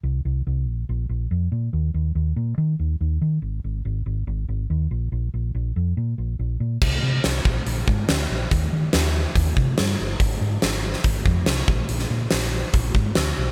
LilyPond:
<<
  \new Staff \with { instrumentName = "Fingered electric bass" } { \clef bass \time 4/4 \key ees \major \tempo 4 = 142 c,8 c,8 c,8 bes,,8 bes,,8 bes,,8 f,8 bes,8 | ees,8 ees,8 ees,8 bes,8 ees8 ees,8 ees,8 ees8 | aes,,8 aes,,8 aes,,8 aes,,8 aes,,8 aes,,8 ees,8 bes,,8 | bes,,8 bes,,8 bes,,8 f,8 bes,8 bes,,8 bes,,8 bes,8 |
c,8 c8 c,8 bes,,8 bes,,8 aes,8 d,8 bes,,8 | ees,8 ees8 ees,4 ees,8 c8 g,8 g,,8 | aes,,8 aes,8 aes,,4 aes,,8 f,8 c,8 bes,,8 | bes,,8 bes,8 bes,,4 bes,,8 aes,8 d,8 b,,8 | }
  \new DrumStaff \with { instrumentName = "Drums" } \drummode { \time 4/4 r4 r4 r4 r4 | r4 r4 r4 r4 | r4 r4 r4 r4 | r4 r4 r4 r4 |
<cymc bd>4 <hho sn>8 bd8 hho8 bd8 <hho sn>4 | <hho bd>4 <hho sn>4 <hho bd>8 bd8 <hho sn>4 | <hho bd>4 <hho sn>8. sn16 <hho bd>8 bd8 <hho sn>8 bd8 | hho16 sn8. <hho sn>4 <hho bd>8 bd8 <hho sn>4 | }
>>